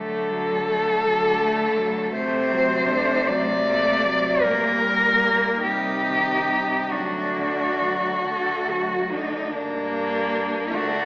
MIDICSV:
0, 0, Header, 1, 5, 480
1, 0, Start_track
1, 0, Key_signature, -2, "minor"
1, 0, Tempo, 744417
1, 1377, Time_signature, 6, 3, 24, 8
1, 1864, Tempo, 778210
1, 3304, Tempo, 819672
1, 3784, Tempo, 877193
1, 5704, Tempo, 790514
1, 6613, End_track
2, 0, Start_track
2, 0, Title_t, "Cello"
2, 0, Program_c, 0, 42
2, 0, Note_on_c, 0, 69, 79
2, 1352, Note_off_c, 0, 69, 0
2, 1385, Note_on_c, 0, 72, 82
2, 2097, Note_on_c, 0, 74, 87
2, 2107, Note_off_c, 0, 72, 0
2, 2811, Note_on_c, 0, 70, 88
2, 2820, Note_off_c, 0, 74, 0
2, 3537, Note_off_c, 0, 70, 0
2, 3541, Note_on_c, 0, 67, 75
2, 4260, Note_on_c, 0, 66, 58
2, 4268, Note_off_c, 0, 67, 0
2, 5462, Note_off_c, 0, 66, 0
2, 5465, Note_on_c, 0, 63, 54
2, 5695, Note_on_c, 0, 62, 67
2, 5704, Note_off_c, 0, 63, 0
2, 6424, Note_on_c, 0, 66, 88
2, 6433, Note_off_c, 0, 62, 0
2, 6613, Note_off_c, 0, 66, 0
2, 6613, End_track
3, 0, Start_track
3, 0, Title_t, "Cello"
3, 0, Program_c, 1, 42
3, 0, Note_on_c, 1, 54, 51
3, 675, Note_on_c, 1, 57, 57
3, 684, Note_off_c, 1, 54, 0
3, 1359, Note_off_c, 1, 57, 0
3, 1363, Note_on_c, 1, 57, 53
3, 1607, Note_off_c, 1, 57, 0
3, 1611, Note_on_c, 1, 60, 53
3, 1848, Note_on_c, 1, 62, 55
3, 1858, Note_off_c, 1, 60, 0
3, 2093, Note_on_c, 1, 57, 59
3, 2102, Note_off_c, 1, 62, 0
3, 2335, Note_on_c, 1, 58, 56
3, 2344, Note_off_c, 1, 57, 0
3, 2570, Note_on_c, 1, 57, 55
3, 2579, Note_off_c, 1, 58, 0
3, 2791, Note_off_c, 1, 57, 0
3, 2795, Note_on_c, 1, 55, 57
3, 3521, Note_off_c, 1, 55, 0
3, 3531, Note_on_c, 1, 63, 62
3, 4257, Note_on_c, 1, 62, 49
3, 4266, Note_off_c, 1, 63, 0
3, 4947, Note_off_c, 1, 62, 0
3, 4997, Note_on_c, 1, 69, 50
3, 5240, Note_on_c, 1, 66, 44
3, 5249, Note_off_c, 1, 69, 0
3, 5466, Note_on_c, 1, 62, 37
3, 5475, Note_off_c, 1, 66, 0
3, 5700, Note_off_c, 1, 62, 0
3, 6416, Note_on_c, 1, 62, 60
3, 6613, Note_off_c, 1, 62, 0
3, 6613, End_track
4, 0, Start_track
4, 0, Title_t, "Cello"
4, 0, Program_c, 2, 42
4, 0, Note_on_c, 2, 57, 49
4, 200, Note_on_c, 2, 54, 42
4, 209, Note_off_c, 2, 57, 0
4, 442, Note_on_c, 2, 57, 41
4, 452, Note_off_c, 2, 54, 0
4, 683, Note_on_c, 2, 54, 44
4, 693, Note_off_c, 2, 57, 0
4, 906, Note_off_c, 2, 54, 0
4, 910, Note_on_c, 2, 57, 41
4, 1145, Note_on_c, 2, 54, 48
4, 1154, Note_off_c, 2, 57, 0
4, 1377, Note_off_c, 2, 54, 0
4, 1381, Note_on_c, 2, 57, 55
4, 1628, Note_on_c, 2, 54, 48
4, 1637, Note_off_c, 2, 57, 0
4, 1873, Note_on_c, 2, 57, 50
4, 1883, Note_off_c, 2, 54, 0
4, 2106, Note_on_c, 2, 54, 46
4, 2115, Note_off_c, 2, 57, 0
4, 2338, Note_off_c, 2, 54, 0
4, 2353, Note_on_c, 2, 57, 46
4, 2575, Note_on_c, 2, 54, 51
4, 2584, Note_off_c, 2, 57, 0
4, 2812, Note_off_c, 2, 54, 0
4, 2823, Note_on_c, 2, 58, 54
4, 3063, Note_on_c, 2, 55, 45
4, 3072, Note_off_c, 2, 58, 0
4, 3309, Note_on_c, 2, 58, 48
4, 3317, Note_off_c, 2, 55, 0
4, 3544, Note_off_c, 2, 58, 0
4, 3549, Note_on_c, 2, 55, 44
4, 3796, Note_on_c, 2, 51, 38
4, 3804, Note_off_c, 2, 55, 0
4, 4025, Note_on_c, 2, 55, 39
4, 4033, Note_off_c, 2, 51, 0
4, 4262, Note_off_c, 2, 55, 0
4, 4265, Note_on_c, 2, 54, 42
4, 4507, Note_on_c, 2, 50, 37
4, 4516, Note_off_c, 2, 54, 0
4, 4751, Note_on_c, 2, 54, 39
4, 4759, Note_off_c, 2, 50, 0
4, 4988, Note_on_c, 2, 50, 35
4, 4997, Note_off_c, 2, 54, 0
4, 5231, Note_off_c, 2, 50, 0
4, 5233, Note_on_c, 2, 54, 32
4, 5470, Note_on_c, 2, 50, 37
4, 5478, Note_off_c, 2, 54, 0
4, 5693, Note_off_c, 2, 50, 0
4, 5697, Note_on_c, 2, 58, 58
4, 6427, Note_on_c, 2, 57, 55
4, 6436, Note_off_c, 2, 58, 0
4, 6613, Note_off_c, 2, 57, 0
4, 6613, End_track
5, 0, Start_track
5, 0, Title_t, "Cello"
5, 0, Program_c, 3, 42
5, 0, Note_on_c, 3, 50, 54
5, 587, Note_off_c, 3, 50, 0
5, 675, Note_on_c, 3, 50, 55
5, 1293, Note_off_c, 3, 50, 0
5, 1372, Note_on_c, 3, 48, 65
5, 2014, Note_off_c, 3, 48, 0
5, 2098, Note_on_c, 3, 48, 58
5, 2723, Note_off_c, 3, 48, 0
5, 2805, Note_on_c, 3, 46, 64
5, 3456, Note_off_c, 3, 46, 0
5, 3538, Note_on_c, 3, 48, 50
5, 4173, Note_off_c, 3, 48, 0
5, 4265, Note_on_c, 3, 38, 50
5, 4914, Note_off_c, 3, 38, 0
5, 4997, Note_on_c, 3, 38, 44
5, 5625, Note_off_c, 3, 38, 0
5, 5708, Note_on_c, 3, 43, 64
5, 6434, Note_on_c, 3, 38, 58
5, 6444, Note_off_c, 3, 43, 0
5, 6613, Note_off_c, 3, 38, 0
5, 6613, End_track
0, 0, End_of_file